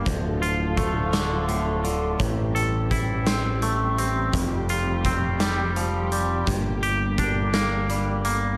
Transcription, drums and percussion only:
0.06 kick medium
0.06 closed hi-hat medium
0.42 closed hi-hat soft
0.77 kick medium
0.77 closed hi-hat medium
1.13 snare medium
1.13 closed hi-hat medium
1.48 closed hi-hat soft
1.84 closed hi-hat soft
2.20 kick medium
2.20 closed hi-hat medium
2.56 closed hi-hat soft
2.91 kick medium
2.91 closed hi-hat medium
3.27 snare medium
3.27 closed hi-hat medium
3.62 closed hi-hat soft
3.98 closed hi-hat medium
4.33 kick medium
4.33 closed hi-hat medium
4.69 closed hi-hat medium
5.05 kick medium
5.05 closed hi-hat medium
5.40 snare medium
5.40 closed hi-hat medium
5.76 closed hi-hat soft
6.12 closed hi-hat medium
6.47 kick medium
6.47 closed hi-hat medium
6.83 closed hi-hat soft
7.18 kick medium
7.18 closed hi-hat medium
7.54 snare medium
7.54 closed hi-hat medium
7.89 closed hi-hat soft
8.24 closed hi-hat medium

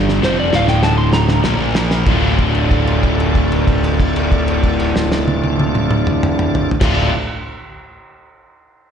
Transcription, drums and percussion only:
0.09 snare medium
0.23 snare medium
0.53 snare medium
0.68 snare medium
0.83 snare medium
1.13 snare loud
1.29 snare medium
1.44 snare loud
1.75 snare loud
1.91 snare loud
2.06 kick loud
2.06 crash medium
2.38 kick medium
2.38 crash soft
2.55 crash soft
2.71 kick medium
2.71 crash soft
2.87 crash soft
3.03 kick medium
3.03 crash soft
3.20 crash soft
3.35 kick medium
3.35 crash soft
3.52 crash medium
3.67 kick medium
3.67 crash medium
3.84 crash medium
4.00 kick medium
4.00 crash medium
4.16 crash medium
4.32 kick medium
4.32 crash medium
4.48 crash medium
4.63 kick medium
4.63 crash medium
4.79 crash medium
4.96 snare medium
5.12 snare medium
5.28 high tom loud
5.44 high tom loud
5.60 high tom loud
5.75 mid tom medium
5.91 mid tom loud
6.07 mid tom medium
6.23 mid tom loud
6.39 mid tom loud
6.55 floor tom loud
6.71 floor tom loud
6.81 kick loud
6.81 snare loud
6.81 crash loud

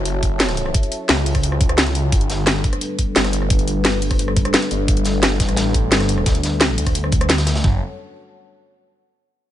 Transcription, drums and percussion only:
0.05 closed hi-hat loud
0.05 closed hi-hat medium
0.23 kick medium
0.23 closed hi-hat medium
0.40 snare loud
0.40 closed hi-hat medium
0.40 closed hi-hat loud
0.49 cross-stick soft
0.49 snare soft
0.49 closed hi-hat soft
0.57 closed hi-hat medium
0.66 cross-stick soft
0.74 kick loud
0.74 closed hi-hat medium
0.83 closed hi-hat soft
0.92 closed hi-hat medium
1.09 snare loud
1.09 closed hi-hat medium
1.26 closed hi-hat medium
1.26 open hi-hat medium
1.35 kick medium
1.35 cross-stick soft
1.35 closed hi-hat soft
1.43 closed hi-hat medium
1.52 cross-stick soft
1.61 kick loud
1.61 closed hi-hat medium
1.69 cross-stick medium
1.69 closed hi-hat soft
1.77 snare loud
1.77 closed hi-hat medium
1.86 snare soft
1.86 closed hi-hat soft
1.95 closed hi-hat medium
2.12 kick loud
2.12 closed hi-hat medium
2.21 closed hi-hat soft
2.30 snare medium
2.30 closed hi-hat medium
2.46 snare loud
2.46 closed hi-hat medium
2.64 kick loud
2.64 closed hi-hat medium
2.73 cross-stick soft
2.73 closed hi-hat soft
2.81 closed hi-hat medium
2.99 kick medium
2.99 closed hi-hat medium
3.15 snare loud
3.15 closed hi-hat loud
3.15 closed hi-hat medium
3.24 cross-stick soft
3.24 snare soft
3.24 closed hi-hat soft
3.33 closed hi-hat medium
3.42 cross-stick soft
3.50 kick loud
3.50 closed hi-hat medium
3.59 closed hi-hat soft
3.67 closed hi-hat medium
3.85 snare loud
3.85 closed hi-hat medium
3.85 closed hi-hat loud
4.02 closed hi-hat medium
4.02 open hi-hat medium
4.11 kick medium
4.11 cross-stick soft
4.11 closed hi-hat soft
4.19 closed hi-hat loud
4.19 closed hi-hat medium
4.28 cross-stick soft
4.36 kick loud
4.36 closed hi-hat medium
4.45 cross-stick medium
4.45 closed hi-hat soft
4.54 snare loud
4.54 closed hi-hat medium
4.62 snare soft
4.62 closed hi-hat soft
4.71 closed hi-hat medium
4.88 kick loud
4.88 closed hi-hat medium
4.97 closed hi-hat soft
5.04 snare medium
5.04 closed hi-hat medium
5.23 snare loud
5.23 closed hi-hat medium
5.23 closed hi-hat loud
5.40 kick loud
5.40 snare soft
5.40 closed hi-hat medium
5.49 cross-stick soft
5.49 closed hi-hat soft
5.57 snare loud
5.57 closed hi-hat medium
5.57 closed hi-hat loud
5.74 kick medium
5.74 closed hi-hat medium
5.92 snare loud
5.92 closed hi-hat loud
5.92 closed hi-hat medium
6.00 cross-stick soft
6.00 snare soft
6.00 closed hi-hat soft
6.09 closed hi-hat medium
6.18 cross-stick soft
6.26 kick loud
6.26 snare medium
6.26 closed hi-hat medium
6.26 closed hi-hat loud
6.35 closed hi-hat soft
6.43 snare soft
6.43 closed hi-hat medium
6.60 snare loud
6.60 closed hi-hat medium
6.60 closed hi-hat loud
6.78 closed hi-hat medium
6.78 open hi-hat medium
6.87 kick medium
6.87 cross-stick soft
6.87 closed hi-hat soft
6.95 closed hi-hat loud
6.95 closed hi-hat medium
7.04 cross-stick soft
7.12 kick loud
7.12 closed hi-hat medium
7.21 cross-stick medium
7.21 closed hi-hat soft
7.29 snare loud
7.29 closed hi-hat loud
7.29 closed hi-hat medium
7.38 snare medium
7.38 closed hi-hat soft
7.38 closed hi-hat medium
7.47 snare loud
7.47 closed hi-hat medium
7.55 snare loud
7.55 closed hi-hat medium
7.64 kick loud
7.64 floor tom loud

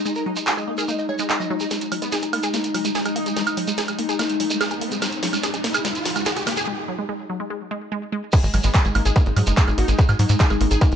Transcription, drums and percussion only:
0.06 shekere medium
0.15 shekere soft
0.36 shekere medium
0.47 clap loud
0.47 shekere medium
0.57 shekere soft
0.78 shekere medium
0.88 shekere medium
0.99 shekere soft
1.19 shekere medium
1.30 clap loud
1.30 shekere medium
1.41 shekere soft
1.60 shekere medium
1.71 snare soft
1.71 closed hi-hat medium
1.71 shekere medium
1.81 closed hi-hat medium
1.81 shekere soft
1.92 open hi-hat loud
1.92 high woodblock soft
2.02 closed hi-hat medium
2.02 shekere medium
2.12 snare medium
2.12 closed hi-hat medium
2.12 shekere medium
2.22 closed hi-hat medium
2.22 shekere soft
2.33 open hi-hat medium
2.33 high woodblock medium
2.43 closed hi-hat medium
2.43 shekere medium
2.54 snare medium
2.54 closed hi-hat medium
2.54 shekere medium
2.64 closed hi-hat medium
2.64 shekere soft
2.74 open hi-hat loud
2.74 high woodblock soft
2.85 closed hi-hat medium
2.85 shekere medium
2.95 snare medium
2.95 closed hi-hat medium
2.95 shekere medium
3.05 closed hi-hat medium
3.05 high woodblock soft
3.05 shekere soft
3.16 open hi-hat medium
3.26 closed hi-hat medium
3.26 shekere medium
3.37 snare medium
3.37 closed hi-hat medium
3.37 shekere medium
3.47 closed hi-hat medium
3.47 high woodblock medium
3.47 shekere soft
3.57 open hi-hat loud
3.68 closed hi-hat medium
3.68 shekere medium
3.77 snare medium
3.77 closed hi-hat medium
3.77 shekere medium
3.88 closed hi-hat medium
3.88 high woodblock soft
3.88 shekere soft
3.99 open hi-hat medium
4.09 closed hi-hat medium
4.09 shekere medium
4.19 snare medium
4.19 closed hi-hat medium
4.19 high woodblock soft
4.19 shekere medium
4.30 closed hi-hat medium
4.30 shekere soft
4.40 open hi-hat loud
4.50 closed hi-hat medium
4.50 shekere medium
4.61 snare medium
4.61 closed hi-hat medium
4.61 high woodblock medium
4.61 shekere medium
4.71 closed hi-hat medium
4.71 shekere soft
4.81 open hi-hat medium
4.92 closed hi-hat medium
4.92 shekere medium
5.02 snare medium
5.02 closed hi-hat medium
5.02 high woodblock soft
5.02 shekere medium
5.12 closed hi-hat medium
5.12 shekere soft
5.23 snare medium
5.23 open hi-hat loud
5.33 closed hi-hat medium
5.33 high woodblock soft
5.33 shekere medium
5.43 snare medium
5.43 closed hi-hat medium
5.43 shekere medium
5.54 closed hi-hat medium
5.54 shekere soft
5.64 snare medium
5.64 open hi-hat medium
5.74 closed hi-hat medium
5.74 high woodblock medium
5.74 shekere medium
5.85 snare medium
5.85 closed hi-hat medium
5.85 shekere medium
5.95 closed hi-hat medium
5.95 shekere soft
6.05 snare medium
6.05 open hi-hat loud
6.16 closed hi-hat medium
6.16 high woodblock soft
6.16 shekere medium
6.26 snare medium
6.26 closed hi-hat medium
6.26 shekere medium
6.36 closed hi-hat medium
6.36 shekere soft
6.47 snare medium
6.47 open hi-hat medium
6.47 high woodblock soft
6.57 closed hi-hat soft
6.57 shekere medium
8.33 kick loud
8.33 closed hi-hat medium
8.33 crash loud
8.33 shekere medium
8.43 closed hi-hat soft
8.43 shekere soft
8.54 open hi-hat loud
8.54 high woodblock soft
8.63 closed hi-hat medium
8.63 shekere medium
8.74 kick loud
8.74 clap loud
8.74 closed hi-hat medium
8.74 shekere medium
8.85 closed hi-hat soft
8.85 shekere soft
8.95 open hi-hat medium
8.95 high woodblock medium
9.05 closed hi-hat medium
9.05 shekere medium
9.16 kick loud
9.16 closed hi-hat medium
9.16 shekere medium
9.26 closed hi-hat soft
9.26 shekere soft
9.37 open hi-hat loud
9.37 high woodblock soft
9.47 closed hi-hat medium
9.47 shekere medium
9.57 kick loud
9.57 clap loud
9.57 closed hi-hat medium
9.57 shekere medium
9.68 closed hi-hat soft
9.68 high woodblock soft
9.68 shekere soft
9.78 open hi-hat medium
9.88 closed hi-hat medium
9.88 shekere medium
9.99 kick loud
9.99 closed hi-hat medium
9.99 shekere medium
10.09 closed hi-hat soft
10.09 high woodblock medium
10.09 shekere soft
10.19 open hi-hat loud
10.29 closed hi-hat medium
10.29 shekere medium
10.39 kick loud
10.39 clap loud
10.39 closed hi-hat medium
10.39 shekere medium
10.50 closed hi-hat soft
10.50 high woodblock soft
10.50 shekere soft
10.61 open hi-hat loud
10.71 closed hi-hat medium
10.71 shekere medium
10.81 kick loud
10.81 closed hi-hat medium
10.81 high woodblock soft
10.81 shekere medium
10.92 closed hi-hat soft
10.92 shekere soft

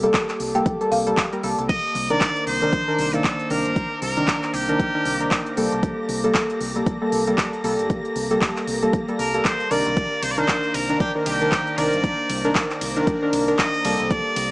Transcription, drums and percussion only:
0.03 closed hi-hat medium
0.14 kick loud
0.14 clap loud
0.14 closed hi-hat medium
0.29 clap soft
0.29 closed hi-hat soft
0.40 open hi-hat loud
0.55 closed hi-hat medium
0.66 kick loud
0.66 closed hi-hat medium
0.81 closed hi-hat soft
0.92 open hi-hat loud
1.07 closed hi-hat medium
1.17 kick loud
1.17 clap loud
1.17 closed hi-hat medium
1.33 closed hi-hat soft
1.43 open hi-hat loud
1.59 closed hi-hat medium
1.69 kick loud
1.69 closed hi-hat medium
1.69 crash medium
1.95 open hi-hat loud
2.10 closed hi-hat medium
2.21 kick loud
2.21 clap loud
2.21 closed hi-hat medium
2.36 closed hi-hat soft
2.47 open hi-hat loud
2.62 closed hi-hat medium
2.73 kick loud
2.73 closed hi-hat medium
2.99 open hi-hat loud
3.14 closed hi-hat medium
3.24 kick loud
3.24 clap loud
3.24 closed hi-hat medium
3.40 closed hi-hat soft
3.50 open hi-hat loud
3.65 closed hi-hat medium
3.76 kick loud
3.76 closed hi-hat medium
4.02 open hi-hat loud
4.17 closed hi-hat medium
4.28 kick loud
4.28 clap loud
4.28 closed hi-hat medium
4.43 clap soft
4.43 closed hi-hat soft
4.54 open hi-hat loud
4.69 closed hi-hat medium
4.80 kick loud
4.80 closed hi-hat medium
5.05 open hi-hat loud
5.21 closed hi-hat medium
5.31 kick loud
5.31 clap loud
5.31 closed hi-hat medium
5.46 closed hi-hat soft
5.57 open hi-hat loud
5.72 closed hi-hat medium
5.83 kick loud
5.83 closed hi-hat medium
6.09 open hi-hat loud
6.24 closed hi-hat medium
6.35 kick loud
6.35 clap loud
6.35 closed hi-hat medium
6.50 closed hi-hat soft
6.61 open hi-hat loud
6.76 closed hi-hat medium
6.86 kick loud
6.86 closed hi-hat medium
7.12 open hi-hat loud
7.27 closed hi-hat medium
7.38 kick loud
7.38 clap loud
7.38 closed hi-hat medium
7.53 closed hi-hat soft
7.64 open hi-hat loud
7.79 closed hi-hat medium
7.90 kick loud
7.90 closed hi-hat medium
8.05 closed hi-hat soft
8.16 open hi-hat loud
8.31 closed hi-hat soft
8.41 kick loud
8.41 clap loud
8.41 closed hi-hat medium
8.57 clap soft
8.57 closed hi-hat soft
8.67 open hi-hat loud
8.83 closed hi-hat medium
8.93 kick loud
8.93 closed hi-hat medium
9.08 closed hi-hat soft
9.19 open hi-hat loud
9.34 closed hi-hat medium
9.45 kick loud
9.45 clap loud
9.45 closed hi-hat medium
9.60 closed hi-hat soft
9.71 open hi-hat loud
9.86 closed hi-hat medium
9.97 kick loud
9.97 closed hi-hat medium
10.23 open hi-hat loud
10.23 ride medium
10.38 closed hi-hat soft
10.48 kick loud
10.48 clap loud
10.48 closed hi-hat medium
10.64 closed hi-hat soft
10.74 open hi-hat loud
10.74 ride medium
10.89 closed hi-hat soft
11.00 kick loud
11.00 closed hi-hat medium
11.26 open hi-hat loud
11.26 ride medium
11.41 closed hi-hat medium
11.52 kick loud
11.52 clap loud
11.52 closed hi-hat medium
11.67 closed hi-hat soft
11.78 open hi-hat loud
11.78 ride medium
11.93 closed hi-hat soft
12.04 kick loud
12.04 closed hi-hat medium
12.30 open hi-hat loud
12.30 ride medium
12.45 closed hi-hat medium
12.55 kick loud
12.55 clap loud
12.55 closed hi-hat medium
12.70 clap soft
12.70 closed hi-hat soft
12.81 open hi-hat loud
12.81 ride medium
12.96 closed hi-hat medium
13.07 kick loud
13.07 closed hi-hat medium
13.33 open hi-hat loud
13.33 ride medium
13.48 closed hi-hat medium
13.59 kick loud
13.59 clap loud
13.59 closed hi-hat medium
13.74 closed hi-hat soft
13.85 open hi-hat loud
13.85 ride medium
14.00 closed hi-hat soft
14.11 kick loud
14.11 closed hi-hat medium
14.36 open hi-hat loud
14.36 ride medium

